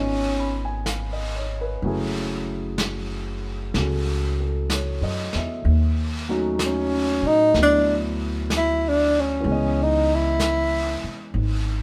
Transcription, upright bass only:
Already playing: G#1
1.82 F#1
3.74 C#2
5.01 F#2
5.35 E2
5.65 D#2
7.22 A2
7.54 D2
9.44 C#2
11.04 muted upright bass stroke
11.34 G#1

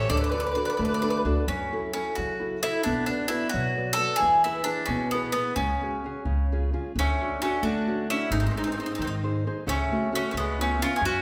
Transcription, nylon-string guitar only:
0.10 D3
0.33 D4 F#4 A4
0.56 D4 F#4 A4
0.79 A3
1.02 D4 F#4 A4
1.25 D4 F#4 A4
1.47 F#3
1.72 E4 F#4 A4
1.94 E4 F#4 A4
2.18 C#3
2.40 E4 F#4 A4
2.63 E4 F#4 A4
2.85 B3
3.09 F#4 B4 D5
3.29 F#4 B4 D5
3.53 F#3
3.76 F#4 B4 D5
3.97 F#4 B4 D5
4.20 E3
4.45 E4 G#4 B4
4.66 E4 G#4 B4
4.89 B2
5.14 E4 G#4 B4
5.35 E4 G#4 B4
5.57 C#3
5.81 C#4 F#4 G#4
6.04 C#4 F#4 G#4
6.26 C#3
6.52 C#4 F4 G#4
6.73 C#4 F4 G#4
6.96 D3
7.21 C#4 D4 F#4
7.42 C#4 D4 F#4
7.62 A3
7.87 C#4 D4 F#4
8.10 C#4 D4 F#4
8.33 G#3
8.56 D#4 G#4 C5
8.78 D#4 G#4 C5
9.00 D#3
9.23 D#4 G#4 C5
9.47 D#4 G#4 C5
9.66 C#3
9.92 A3 C#4 F#4
10.12 A3 C#4 F#4
10.34 C#3
10.59 B3 C#4 F4
10.78 B3 C#4 F4
11.01 F#3

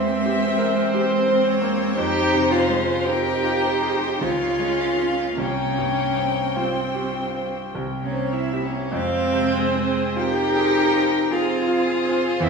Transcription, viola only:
Already playing: C4
1.97 G4
2.51 F4
3.05 G4
4.22 F4
5.37 C#4
6.57 C4
8.03 C#4
8.33 E4
8.64 C#4
8.93 C4
10.17 G4
11.32 F4
12.42 E4

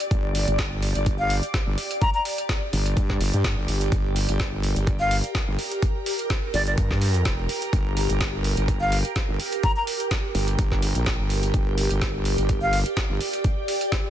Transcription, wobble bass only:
0.11 G1
0.48 G1
0.95 G1
1.67 G1
2.73 G1
2.97 G2
3.21 G1
3.33 G2
3.57 G1
3.68 G1
3.92 G1
4.29 G1
4.76 G1
5.48 G1
6.54 G1
6.78 G2
7.25 F1
7.73 G1
8.10 G1
8.57 G1
9.29 G1
10.35 G1
10.59 G1
10.95 A#1
11.19 G1
11.54 G1
11.91 G1
12.38 G1
13.10 G1

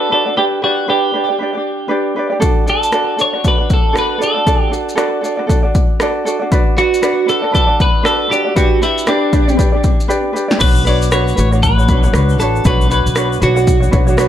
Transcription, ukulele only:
Already playing: D4 F#4 D5
0.10 D4 F#4 B4 D5
0.26 D4 F#4 D5
0.37 D4 G4 B4 D5
0.62 D4 G4 B4 D5
0.88 D4 G4 B4 D5
1.13 D4 G4 B4 D5
1.29 D4 G4 D5
1.39 D4 G4 B4
1.43 D5
1.53 G4 D5
1.57 D4
1.88 D4 G4 B4 D5
2.16 D4 G4 B4 D5
2.30 D4 G4 D5
2.40 D4 F#4 A4 D5
2.66 D4 F#4 A4 D5
2.92 D4 F#4 A4 D5
3.17 D4 F#4 A4 D5
3.33 D4 F#4 D5
3.44 D4 F#4 A4 D5
3.58 D4 F#4 D5
3.93 D4 F#4 A4 D5
4.18 D4 F#4 A4 D5
4.34 D4 F#4 D5
4.46 D4 F#4 A4 D5
4.70 D4 F#4 A4 D5
4.95 D4 F#4 A4 D5
5.21 D4 F#4 A4 D5
5.37 D4 F#4 D5
5.47 D4 F#4 A4 D5
5.63 D4 F#4 D5
6.00 D4 F#4 A4 D5
6.25 D4 F#4 A4 D5
6.40 D4 F#4 D5
6.51 D4 F#4 B4 D5
6.77 D4 F#4 B4 D5
7.02 D4 F#4 B4 D5
7.26 D4 F#4 B4 D5
7.42 D4 F#4 D5
7.52 D4 F#4 B4 D5
7.67 D4 F#4 D5
8.03 D4 F#4 B4 D5
8.28 D4 F#4 B4
8.33 D5
8.45 D4 F#4 D5
8.55 D4 G4 B4 D5
8.82 D4 G4 B4 D5
9.07 D4 G4 B4 D5
9.32 D4 G4 B4 D5
9.48 D4 G4 D5
9.57 D4 G4 B4 D5
9.72 D4 G4 D5
10.08 D4 G4 B4 D5
10.33 D4 G4 B4 D5
10.48 D4 G4 D5
10.59 D4 F#4 B4 C#5
10.85 D4 F#4 B4 C#5
11.11 D4 F#4 B4 C#5
11.36 D4 F#4 B4 C#5
11.51 D4 F#4 C#5
11.77 D4 F#4 C#5
11.88 D4 F#4 B4 C#5
12.04 D4 F#4 C#5
12.13 D4 F#4 B4 C#5
12.39 D4 F#4 B4 C#5
12.65 D4 F#4 B4 C#5
12.88 D4 F#4 B4 C#5
13.15 D4 F#4 B4 C#5
13.41 D4 F#4 B4 C#5
13.55 D4 F#4 C#5
13.80 D4 F#4 C#5
13.91 D4 F#4 B4 C#5
14.07 D4 F#4 C#5
14.17 D4 F#4 B4 C#5

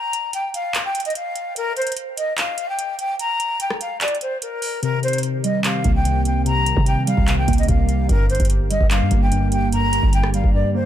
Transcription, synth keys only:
4.82 C3
5.44 G3
5.65 C3
5.85 A#3
6.05 C3
6.45 C3
7.07 G3
7.28 C3
7.48 A#3
7.69 C3
8.09 G2
8.71 G3
8.91 G2
9.11 A#3
9.32 G2
9.73 G2
10.34 G3
10.54 G2
10.75 A#3

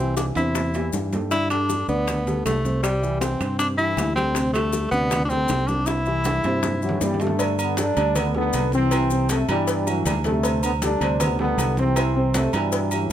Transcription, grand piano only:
0.00 E3 E4 G4
0.36 C3 C4 C5
0.75 E3 E4 G4
1.13 G3 G4 A4
1.32 D3 D4 D5
1.51 G3 G4 A4
1.88 D3 D4 D5
2.27 G3 G4 A4
2.65 C3 C4 C5
3.02 E3 E4 G4
3.40 C3 C4 C5
3.78 E3 E4 G4
4.16 G3 G4 A4
4.36 C3 C4 C5
4.55 G3 G4 A4
4.93 C3 D4 D5
5.31 G3 G4 A4
5.69 C3 C4 C5
6.07 E3 E4 G4
6.45 C3 C4 C5
6.82 E3 E4 G4
7.20 G3 G4 A4
7.39 D3 D4 D5
7.78 G3 G4 A4
7.96 D3 D4 D5
8.35 G3 G4 A4
8.72 C3 C4 C5
8.92 E3 E4 G4
9.11 C3 C4 C5
9.49 E3 E4 G4
9.86 E3 E4 G4
10.25 G3 G4 A4
10.44 C3 C4 C5
10.81 G3 G4 A4
11.00 C3 C4 C5
11.39 G3 G4 A4
11.78 C3 C4 C5
11.97 E3 E4 G4
12.16 C3 C4 C5
12.54 E3 E4 G4
12.92 E3 E4 G4

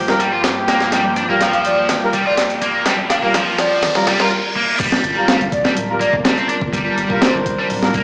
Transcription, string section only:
Already playing: G2 F3 A#3 G4
4.79 G3 D4 F4 A#4

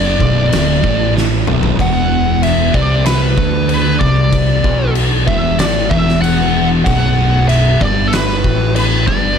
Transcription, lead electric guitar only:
Already playing: D5
1.81 F#5
2.43 E5
2.75 D5
3.06 B4
3.69 B4
4.00 D5
5.27 E5
5.59 D5
5.90 E5
6.22 F#5
6.85 F#5
7.48 E5
7.81 D5
8.08 A4
8.13 B4
8.76 B4
9.07 D5

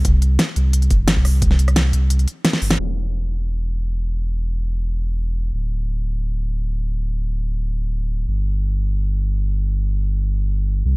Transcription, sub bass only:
0.05 C2
0.56 C2
0.91 G1
1.17 C2
1.93 C2
2.62 G1
2.79 E1
5.53 D1
8.28 G1
10.85 C2

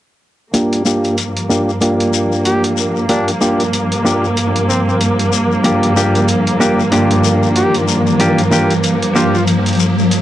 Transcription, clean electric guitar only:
0.54 A#3 D4 F4 G4
0.85 A#3 D4 F4 G4
1.49 A#3 D4 F4 G4
1.81 A#3 D4 F4 G4
3.09 A#3 D4 F4 G4
3.41 A#3 D4 F4 G4
4.05 A#3 D4 F4 G4
5.64 A#3 D4 F4 G4
5.96 A#3 D4 F4 G4
6.60 A#3 D4 F4 G4
6.92 A#3 D4 F4 G4
8.20 A#3 D4 F4 G4
8.51 A#3 D4 F4 G4
9.15 A#3 D4 F4 G4

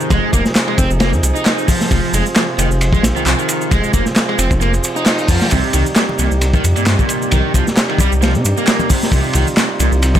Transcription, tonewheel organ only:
Already playing: C3 F3 D#4 G#4
1.91 F4
5.51 G3 D#4 G4
9.13 F4

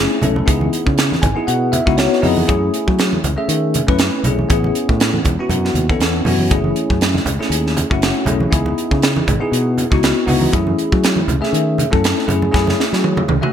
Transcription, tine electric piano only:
Already playing: A3 C#4 E4 G#4
0.21 A3 C#4 E4 A4
0.46 B3 D#4 E4 G#4
1.22 G#5
1.35 B3 D#4 E4 G#4
1.47 F#5
1.72 E5
1.86 B3 D#4 E4 F#4
1.97 C#5
2.21 B3 D#4 E4 G#4 D#5
2.46 A3 C#4 E4 G#4
3.36 A3 C#4 G#4 E5
3.87 A3 C#4 E4 B4
4.24 A3 C#4 E4 G#4
4.49 B3 C#4 E4 G#4
5.39 B3 C#4 E4 F#4
5.89 B3 C#4 E4 A4
6.25 B3 C#4 E4 F#4
6.51 A3 C#4 E4 G#4
7.39 A3 C#4 E4 G#4
7.90 A3 C#4 E4 F#4
8.26 A3 C#4 E4 G#4
8.51 B3 D#4 E4 G#4
9.40 B3 D#4 E4 G#4
9.91 B3 D#4 E4 F#4
10.26 B3 D#4 E4 F#4
10.52 A3 C#4 E4 G#4
11.41 A3 C#4 G#4 E5
11.91 A3 C#4 E4 A4
12.26 A3 C#4 E4 G#4
12.51 A3 C#4 E4 G#4
13.41 A3 C#4 F#4 E5

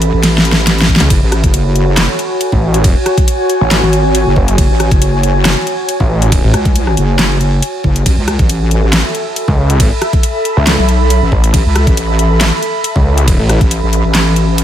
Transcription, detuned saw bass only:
1.00 C#2
2.52 A1
3.61 A1
4.36 F#1
6.00 A1
6.44 A1
9.48 C#2
10.57 C#2
11.32 A1
12.96 C#2
13.39 A1

